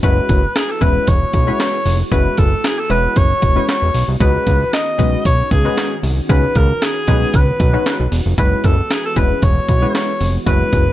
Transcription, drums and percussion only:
0.03 kick, closed hi-hat
0.29 kick, closed hi-hat
0.56 snare, clap, closed hi-hat
0.81 kick, closed hi-hat
1.07 kick, closed hi-hat
1.33 kick, closed hi-hat
1.60 snare, clap, closed hi-hat
1.86 open hi-hat
2.12 kick, closed hi-hat
2.37 kick, closed hi-hat
2.64 snare, clap, closed hi-hat
2.90 closed hi-hat
3.16 kick, closed hi-hat
3.42 kick, closed hi-hat
3.69 snare, clap, closed hi-hat
3.94 open hi-hat
4.21 kick, closed hi-hat
4.47 kick, closed hi-hat
4.73 snare, clap, closed hi-hat
4.99 kick, closed hi-hat
5.25 kick, closed hi-hat
5.51 kick, closed hi-hat
5.77 snare, clap, closed hi-hat
6.03 open hi-hat
6.29 kick, closed hi-hat
6.55 kick, closed hi-hat
6.82 snare, clap, closed hi-hat
7.07 kick, closed hi-hat
7.34 kick, closed hi-hat
7.60 kick, closed hi-hat
7.86 snare, clap, closed hi-hat
8.12 open hi-hat
8.38 kick, closed hi-hat
8.64 kick, closed hi-hat
8.90 snare, clap, closed hi-hat
9.16 kick, closed hi-hat
9.42 kick, closed hi-hat
9.69 kick, closed hi-hat
9.95 snare, clap, closed hi-hat
10.21 open hi-hat
10.47 kick, closed hi-hat
10.73 kick, closed hi-hat

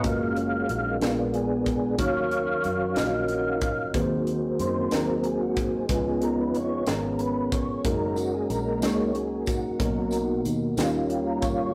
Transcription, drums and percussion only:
0.04 kick, closed hi-hat
0.36 closed hi-hat
0.69 closed hi-hat
1.01 snare, closed hi-hat
1.34 closed hi-hat
1.66 kick, closed hi-hat
1.98 kick, closed hi-hat
2.31 closed hi-hat
2.64 closed hi-hat
2.96 snare, closed hi-hat
3.28 closed hi-hat
3.61 kick, closed hi-hat
3.94 kick, closed hi-hat
4.27 closed hi-hat
4.59 closed hi-hat
4.91 snare, closed hi-hat
5.24 closed hi-hat
5.57 kick, closed hi-hat
5.89 kick, closed hi-hat
6.22 closed hi-hat
6.55 closed hi-hat
6.87 snare, closed hi-hat
7.19 closed hi-hat
7.52 kick, closed hi-hat
7.85 kick, closed hi-hat
8.16 closed hi-hat, tambourine
8.50 closed hi-hat, tambourine
8.82 snare, closed hi-hat, tambourine
9.15 closed hi-hat
9.46 kick, closed hi-hat, tambourine
9.80 kick, closed hi-hat
10.11 closed hi-hat, tambourine
10.45 closed hi-hat, tambourine
10.77 snare, closed hi-hat, tambourine
11.10 closed hi-hat
11.42 kick, closed hi-hat, tambourine

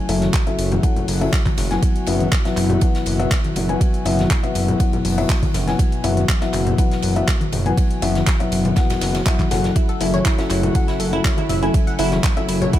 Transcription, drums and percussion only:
0.09 open hi-hat, ride
0.21 snare, closed hi-hat, high conga
0.33 kick, snare, clap, closed hi-hat, ride
0.47 closed hi-hat
0.58 open hi-hat, ride
0.72 closed hi-hat, high conga, low conga
0.83 kick, closed hi-hat, ride
0.96 closed hi-hat, low conga
1.08 open hi-hat
1.21 closed hi-hat
1.32 kick, snare, clap, closed hi-hat, ride
1.46 kick, clap, closed hi-hat, high conga
1.57 snare, open hi-hat, ride, low conga
1.71 snare, closed hi-hat
1.83 kick, closed hi-hat, ride
1.96 closed hi-hat
2.06 open hi-hat, ride
2.20 closed hi-hat, high conga
2.32 kick, snare, clap, closed hi-hat, ride
2.45 snare, closed hi-hat
2.57 clap, open hi-hat, ride
2.70 closed hi-hat, low conga
2.81 kick, closed hi-hat, ride
2.95 snare, closed hi-hat
3.06 open hi-hat, ride
3.20 closed hi-hat
3.31 kick, snare, clap, closed hi-hat, ride
3.44 closed hi-hat, high conga
3.56 open hi-hat, ride, low conga
3.69 closed hi-hat
3.81 kick, closed hi-hat, ride
3.94 closed hi-hat
4.05 open hi-hat, ride
4.19 snare, closed hi-hat, high conga
4.30 kick, snare, clap, closed hi-hat, ride
4.44 closed hi-hat
4.55 open hi-hat, ride
4.68 closed hi-hat, low conga
4.80 kick, closed hi-hat, ride
4.93 closed hi-hat, low conga
5.05 open hi-hat
5.18 closed hi-hat
5.30 kick, snare, clap, closed hi-hat, ride
5.42 kick, closed hi-hat, high conga
5.54 snare, open hi-hat, ride, low conga
5.68 snare, closed hi-hat
5.79 kick, closed hi-hat, ride
5.92 closed hi-hat
6.04 open hi-hat, ride
6.17 closed hi-hat, high conga
6.28 kick, snare, clap, closed hi-hat, ride
6.41 snare, closed hi-hat
6.53 clap, open hi-hat, ride
6.66 closed hi-hat, low conga
6.78 kick, closed hi-hat, ride
6.91 snare, closed hi-hat
7.02 open hi-hat, ride
7.16 closed hi-hat
7.28 kick, snare, clap, closed hi-hat, ride
7.41 closed hi-hat, high conga
7.52 open hi-hat, ride, low conga
7.66 closed hi-hat
7.77 kick, closed hi-hat, ride
7.91 closed hi-hat
8.02 open hi-hat, ride
8.15 snare, closed hi-hat, high conga
8.27 kick, snare, clap, closed hi-hat, ride
8.40 closed hi-hat
8.52 open hi-hat, ride
8.65 closed hi-hat, high conga, low conga
8.76 kick, snare, closed hi-hat, ride
8.90 snare, closed hi-hat, ride, low conga
9.01 snare, open hi-hat, ride
9.15 snare, closed hi-hat, ride
9.26 kick, snare, clap, closed hi-hat, ride
9.39 kick, clap, closed hi-hat, high conga
9.51 snare, open hi-hat, ride, low conga
9.64 snare, closed hi-hat
9.76 kick, closed hi-hat, ride
9.89 closed hi-hat
10.01 open hi-hat, ride
10.14 closed hi-hat, high conga
10.25 kick, snare, clap, closed hi-hat, ride
10.38 snare, closed hi-hat
10.50 clap, open hi-hat, ride
10.63 closed hi-hat, low conga
10.75 kick, closed hi-hat, ride
10.88 snare, closed hi-hat
11.00 open hi-hat, ride
11.13 closed hi-hat
11.24 kick, snare, clap, closed hi-hat, ride
11.37 closed hi-hat, high bongo, high conga
11.49 open hi-hat, ride, low conga
11.63 closed hi-hat
11.74 kick, closed hi-hat, ride
11.87 closed hi-hat
11.99 open hi-hat, ride
12.12 snare, closed hi-hat, high bongo, high conga
12.24 kick, snare, clap, closed hi-hat, ride
12.37 closed hi-hat
12.49 open hi-hat, ride
12.62 closed hi-hat, low conga
12.73 kick, closed hi-hat, ride

